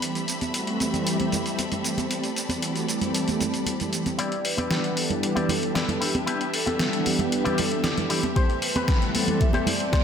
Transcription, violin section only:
0, 0, Header, 1, 2, 480
1, 0, Start_track
1, 0, Key_signature, 1, "minor"
1, 0, Tempo, 521739
1, 16, Time_signature, 4, 2, 24, 8
1, 9236, End_track
2, 0, Start_track
2, 0, Title_t, "Violin section"
2, 0, Program_c, 0, 48
2, 0, Note_on_c, 0, 83, 78
2, 16, Note_on_c, 0, 60, 73
2, 17, Note_on_c, 0, 69, 67
2, 17, Note_on_c, 0, 76, 69
2, 1917, Note_off_c, 0, 76, 0
2, 1937, Note_on_c, 0, 74, 67
2, 3819, Note_off_c, 0, 60, 0
2, 3820, Note_off_c, 0, 69, 0
2, 3820, Note_off_c, 0, 83, 0
2, 3837, Note_off_c, 0, 74, 0
2, 3858, Note_on_c, 0, 62, 73
2, 3858, Note_on_c, 0, 67, 82
2, 3858, Note_on_c, 0, 76, 66
2, 3860, Note_on_c, 0, 71, 67
2, 7660, Note_off_c, 0, 62, 0
2, 7661, Note_off_c, 0, 71, 0
2, 7691, Note_on_c, 0, 60, 81
2, 7695, Note_on_c, 0, 69, 73
2, 9236, Note_off_c, 0, 60, 0
2, 9236, Note_off_c, 0, 67, 0
2, 9236, Note_off_c, 0, 69, 0
2, 9236, Note_off_c, 0, 76, 0
2, 9236, End_track
0, 0, End_of_file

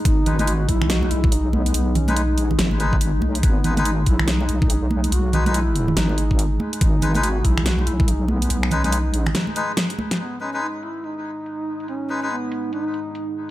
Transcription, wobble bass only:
0, 0, Header, 1, 2, 480
1, 0, Start_track
1, 0, Key_signature, 5, "minor"
1, 0, Tempo, 422535
1, 59, Time_signature, 4, 2, 24, 8
1, 15344, End_track
2, 0, Start_track
2, 0, Title_t, "Wobble bass"
2, 0, Program_c, 0, 39
2, 58, Note_on_c, 0, 32, 93
2, 764, Note_off_c, 0, 32, 0
2, 779, Note_on_c, 0, 35, 98
2, 1244, Note_off_c, 0, 35, 0
2, 1258, Note_on_c, 0, 35, 93
2, 1964, Note_off_c, 0, 35, 0
2, 1979, Note_on_c, 0, 35, 97
2, 2649, Note_off_c, 0, 35, 0
2, 2649, Note_on_c, 0, 34, 97
2, 2924, Note_off_c, 0, 34, 0
2, 2941, Note_on_c, 0, 32, 96
2, 3645, Note_off_c, 0, 32, 0
2, 3660, Note_on_c, 0, 35, 97
2, 3885, Note_off_c, 0, 35, 0
2, 3900, Note_on_c, 0, 32, 91
2, 4605, Note_off_c, 0, 32, 0
2, 4619, Note_on_c, 0, 35, 91
2, 5084, Note_off_c, 0, 35, 0
2, 5101, Note_on_c, 0, 35, 93
2, 5805, Note_off_c, 0, 35, 0
2, 5820, Note_on_c, 0, 35, 94
2, 6765, Note_off_c, 0, 35, 0
2, 6779, Note_on_c, 0, 32, 99
2, 7484, Note_off_c, 0, 32, 0
2, 7738, Note_on_c, 0, 32, 96
2, 8444, Note_off_c, 0, 32, 0
2, 8459, Note_on_c, 0, 35, 99
2, 8924, Note_off_c, 0, 35, 0
2, 8939, Note_on_c, 0, 35, 97
2, 9644, Note_off_c, 0, 35, 0
2, 9658, Note_on_c, 0, 35, 97
2, 10328, Note_off_c, 0, 35, 0
2, 10328, Note_on_c, 0, 34, 97
2, 10604, Note_off_c, 0, 34, 0
2, 15344, End_track
0, 0, End_of_file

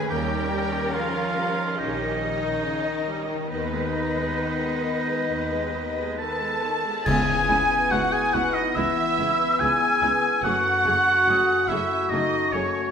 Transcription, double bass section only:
0, 0, Header, 1, 2, 480
1, 0, Start_track
1, 0, Key_signature, 4, "minor"
1, 0, Tempo, 847458
1, 59, Time_signature, 4, 2, 24, 8
1, 1499, Tempo, 882353
1, 3899, Tempo, 842697
1, 7234, End_track
2, 0, Start_track
2, 0, Title_t, "Double bass section"
2, 0, Program_c, 0, 48
2, 48, Note_on_c, 0, 39, 82
2, 449, Note_off_c, 0, 39, 0
2, 1009, Note_on_c, 0, 34, 65
2, 1415, Note_off_c, 0, 34, 0
2, 1969, Note_on_c, 0, 39, 69
2, 2372, Note_off_c, 0, 39, 0
2, 2934, Note_on_c, 0, 39, 63
2, 3343, Note_off_c, 0, 39, 0
2, 3906, Note_on_c, 0, 37, 89
2, 3952, Note_off_c, 0, 37, 0
2, 4149, Note_on_c, 0, 37, 83
2, 4194, Note_off_c, 0, 37, 0
2, 4387, Note_on_c, 0, 37, 79
2, 4433, Note_off_c, 0, 37, 0
2, 4630, Note_on_c, 0, 37, 74
2, 4676, Note_off_c, 0, 37, 0
2, 4871, Note_on_c, 0, 37, 80
2, 4917, Note_off_c, 0, 37, 0
2, 5105, Note_on_c, 0, 37, 68
2, 5150, Note_off_c, 0, 37, 0
2, 5350, Note_on_c, 0, 37, 75
2, 5395, Note_off_c, 0, 37, 0
2, 5581, Note_on_c, 0, 37, 76
2, 5627, Note_off_c, 0, 37, 0
2, 5820, Note_on_c, 0, 30, 85
2, 5865, Note_off_c, 0, 30, 0
2, 6056, Note_on_c, 0, 30, 75
2, 6102, Note_off_c, 0, 30, 0
2, 6294, Note_on_c, 0, 30, 76
2, 6339, Note_off_c, 0, 30, 0
2, 6532, Note_on_c, 0, 30, 72
2, 6578, Note_off_c, 0, 30, 0
2, 6773, Note_on_c, 0, 30, 76
2, 6818, Note_off_c, 0, 30, 0
2, 7013, Note_on_c, 0, 30, 68
2, 7059, Note_off_c, 0, 30, 0
2, 7234, End_track
0, 0, End_of_file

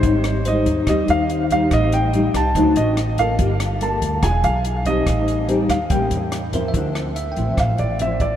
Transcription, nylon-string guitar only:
0, 0, Header, 1, 2, 480
1, 0, Start_track
1, 0, Tempo, 418702
1, 42, Time_signature, 4, 2, 24, 8
1, 9587, End_track
2, 0, Start_track
2, 0, Title_t, "Nylon-string guitar"
2, 0, Program_c, 0, 24
2, 0, Note_on_c, 0, 55, 59
2, 0, Note_on_c, 0, 60, 52
2, 0, Note_on_c, 0, 63, 62
2, 44, Note_on_c, 0, 44, 53
2, 486, Note_off_c, 0, 60, 0
2, 487, Note_off_c, 0, 55, 0
2, 490, Note_off_c, 0, 63, 0
2, 521, Note_on_c, 0, 55, 53
2, 526, Note_on_c, 0, 60, 51
2, 532, Note_on_c, 0, 63, 63
2, 964, Note_off_c, 0, 55, 0
2, 966, Note_off_c, 0, 60, 0
2, 970, Note_off_c, 0, 63, 0
2, 980, Note_off_c, 0, 44, 0
2, 1002, Note_on_c, 0, 51, 49
2, 1005, Note_on_c, 0, 55, 54
2, 1011, Note_on_c, 0, 63, 52
2, 1012, Note_on_c, 0, 60, 47
2, 1686, Note_off_c, 0, 55, 0
2, 1687, Note_off_c, 0, 60, 0
2, 1689, Note_off_c, 0, 63, 0
2, 1726, Note_on_c, 0, 55, 58
2, 1732, Note_on_c, 0, 60, 54
2, 1738, Note_on_c, 0, 63, 67
2, 1940, Note_off_c, 0, 51, 0
2, 1966, Note_on_c, 0, 45, 54
2, 2407, Note_off_c, 0, 55, 0
2, 2410, Note_off_c, 0, 60, 0
2, 2410, Note_off_c, 0, 63, 0
2, 2446, Note_on_c, 0, 55, 55
2, 2454, Note_on_c, 0, 60, 55
2, 2458, Note_on_c, 0, 63, 56
2, 2886, Note_off_c, 0, 55, 0
2, 2891, Note_off_c, 0, 60, 0
2, 2891, Note_off_c, 0, 63, 0
2, 2901, Note_off_c, 0, 45, 0
2, 2926, Note_on_c, 0, 50, 50
2, 2929, Note_on_c, 0, 54, 54
2, 2933, Note_on_c, 0, 60, 57
2, 2938, Note_on_c, 0, 63, 60
2, 3402, Note_off_c, 0, 54, 0
2, 3406, Note_off_c, 0, 60, 0
2, 3408, Note_off_c, 0, 63, 0
2, 3655, Note_on_c, 0, 58, 54
2, 3662, Note_on_c, 0, 65, 59
2, 3665, Note_on_c, 0, 69, 69
2, 3862, Note_off_c, 0, 50, 0
2, 3888, Note_on_c, 0, 55, 55
2, 4332, Note_off_c, 0, 58, 0
2, 4333, Note_off_c, 0, 65, 0
2, 4336, Note_off_c, 0, 69, 0
2, 4363, Note_on_c, 0, 58, 56
2, 4369, Note_on_c, 0, 65, 55
2, 4375, Note_on_c, 0, 69, 65
2, 4805, Note_off_c, 0, 58, 0
2, 4807, Note_off_c, 0, 65, 0
2, 4811, Note_off_c, 0, 69, 0
2, 4822, Note_off_c, 0, 55, 0
2, 4844, Note_on_c, 0, 52, 52
2, 4846, Note_on_c, 0, 62, 52
2, 4848, Note_on_c, 0, 65, 51
2, 4850, Note_on_c, 0, 68, 59
2, 5526, Note_off_c, 0, 62, 0
2, 5526, Note_off_c, 0, 65, 0
2, 5528, Note_off_c, 0, 68, 0
2, 5560, Note_on_c, 0, 55, 57
2, 5565, Note_on_c, 0, 60, 56
2, 5569, Note_on_c, 0, 63, 60
2, 5780, Note_off_c, 0, 52, 0
2, 5800, Note_on_c, 0, 45, 48
2, 6243, Note_off_c, 0, 55, 0
2, 6246, Note_off_c, 0, 60, 0
2, 6246, Note_off_c, 0, 63, 0
2, 6278, Note_on_c, 0, 55, 56
2, 6283, Note_on_c, 0, 60, 53
2, 6286, Note_on_c, 0, 63, 55
2, 6590, Note_off_c, 0, 55, 0
2, 6591, Note_off_c, 0, 60, 0
2, 6593, Note_off_c, 0, 63, 0
2, 6737, Note_off_c, 0, 45, 0
2, 6756, Note_on_c, 0, 55, 47
2, 6761, Note_on_c, 0, 45, 53
2, 6767, Note_on_c, 0, 58, 55
2, 6768, Note_on_c, 0, 61, 55
2, 7440, Note_off_c, 0, 55, 0
2, 7444, Note_off_c, 0, 58, 0
2, 7446, Note_off_c, 0, 61, 0
2, 7483, Note_on_c, 0, 53, 57
2, 7494, Note_on_c, 0, 60, 54
2, 7496, Note_on_c, 0, 64, 56
2, 7698, Note_off_c, 0, 45, 0
2, 7723, Note_on_c, 0, 50, 49
2, 8165, Note_off_c, 0, 53, 0
2, 8167, Note_off_c, 0, 60, 0
2, 8170, Note_off_c, 0, 64, 0
2, 8447, Note_on_c, 0, 53, 47
2, 8454, Note_on_c, 0, 60, 54
2, 8460, Note_on_c, 0, 64, 57
2, 8657, Note_off_c, 0, 50, 0
2, 8682, Note_on_c, 0, 45, 49
2, 9126, Note_off_c, 0, 53, 0
2, 9127, Note_off_c, 0, 60, 0
2, 9132, Note_off_c, 0, 64, 0
2, 9162, Note_on_c, 0, 53, 51
2, 9171, Note_on_c, 0, 64, 56
2, 9172, Note_on_c, 0, 60, 52
2, 9471, Note_off_c, 0, 53, 0
2, 9473, Note_off_c, 0, 60, 0
2, 9474, Note_off_c, 0, 64, 0
2, 9587, Note_off_c, 0, 45, 0
2, 9587, End_track
0, 0, End_of_file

